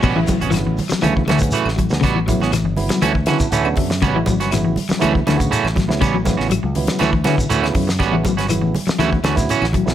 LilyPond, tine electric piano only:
<<
  \new Staff \with { instrumentName = "Tine electric piano" } { \time 4/4 \key a \mixolydian \tempo 4 = 120 r1 | r2 r8 a''8 fis''8 e''8 | r1 | r1 |
r1 | }
  \new Staff \with { instrumentName = "Tine electric piano" } { \clef bass \time 4/4 \key a \mixolydian r16 <cis fis b e'>8 r16 <cis fis b e'>8 r8 <cis fis b e'>8 r16 <cis fis b cis'>8 r8 <cis fis b cis'>16 | r8 <cis fis b e'>8 r8 <cis fis b e'>8 r8 <cis fis b e'>8 r16 <cis fis b d'>8 r16 | r16 <cis fis b e'>8 r16 <cis fis b e'>8 r8 <cis fis b e'>8 r16 <cis fis b fis'>8 r8 <cis fis b e'>16 | r8 <cis fis b e'>8 r8 <cis fis b e'>8 r8 <cis fis b e'>8 r16 <cis fis b e'>8 r16 |
r16 <cis fis b e'>8 r16 <cis fis b e'>8 r8 <cis fis b e'>8 r16 <cis fis b e'>8 r8 <cis fis b e'>16 | }
>>